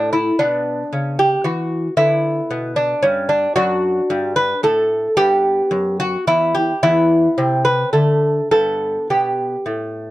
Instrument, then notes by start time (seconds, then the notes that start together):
lute
Already playing: A2 A3 D4
0.13 E4
0.39 B2 B3 D4
0.93 C#3
1.19 G4
1.44 E3 F#4
1.97 D3 B3 E4
2.51 B2
2.76 D4
3.03 G2 C#4
3.29 D4
3.56 F#2 D4 F#4
4.10 G2
4.36 B4
4.63 A2 A4
5.17 G2 B3 G4
5.71 F#2
6.00 F#4
6.27 E2 E4
6.55 G4
6.83 E2 B3 E4
7.38 C3 C4
7.65 B4
7.93 D3 A3 A4
8.51 G2 B3 A4
9.10 B2 G4
9.66 A2